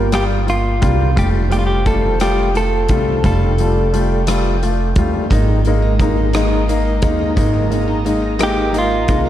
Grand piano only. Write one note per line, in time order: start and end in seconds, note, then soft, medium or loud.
0.12 0.39 G3 medium
0.12 0.39 A#3 medium
0.12 0.39 F4 medium
0.46 0.73 A#3 medium
0.46 0.73 F4 medium
0.82 1.08 G3 medium
0.82 1.08 A#3 medium
0.82 1.08 F4 medium
1.16 1.43 G3 medium
1.16 1.43 A3 medium
1.16 1.43 F4 medium
1.50 1.77 G3 medium
1.50 1.77 A3 medium
1.50 1.77 F4 medium
1.85 2.12 G3 medium
1.85 2.12 A3 medium
1.85 2.12 F4 medium
2.21 2.47 G3 medium
2.21 2.47 A3 medium
2.21 2.47 F4 medium
2.55 2.81 A3 medium
2.55 2.81 F4 medium
2.90 3.16 G3 medium
2.90 3.16 A3 medium
2.90 3.16 F4 medium
3.25 3.50 G3 medium
3.25 3.50 A3 medium
3.25 3.50 F4 medium
3.60 3.85 G3 medium
3.60 3.85 A3 medium
3.60 3.85 F4 medium
3.93 4.19 G3 medium
3.93 4.19 A3 medium
3.93 4.19 F4 medium
4.27 4.53 G3 medium
4.27 4.53 A3 medium
4.27 4.54 F4 medium
4.63 4.88 A3 medium
4.63 4.88 F4 medium
4.98 5.23 G3 medium
4.98 5.23 A3 medium
4.98 5.23 F4 medium
5.32 5.57 G#3 medium
5.32 5.57 A#3 medium
5.32 5.58 D#4 medium
5.67 5.92 G#3 medium
5.67 5.92 A#3 medium
5.67 5.92 D#4 medium
6.00 6.26 G#3 medium
6.00 6.26 A#3 medium
6.00 6.26 D#4 medium
6.34 6.60 G#3 medium
6.34 6.60 A#3 medium
6.34 6.60 D#4 medium
6.69 6.95 A#3 medium
6.69 6.95 D#4 medium
7.02 7.28 G#3 medium
7.02 7.29 A#3 medium
7.02 7.29 D#4 medium
7.36 7.63 G#3 medium
7.36 7.63 A#3 medium
7.36 7.63 D#4 medium
7.70 7.97 G#3 medium
7.70 7.97 A#3 medium
7.70 7.98 D#4 medium
8.05 8.32 G#3 medium
8.05 8.32 A#3 medium
8.05 8.32 D#4 medium
8.39 8.66 G#3 medium
8.39 8.66 A#3 medium
8.39 8.66 D#4 medium
8.73 9.00 A#3 medium
8.73 9.00 D#4 medium
9.08 9.29 G#3 medium
9.08 9.29 A#3 medium
9.08 9.29 D#4 medium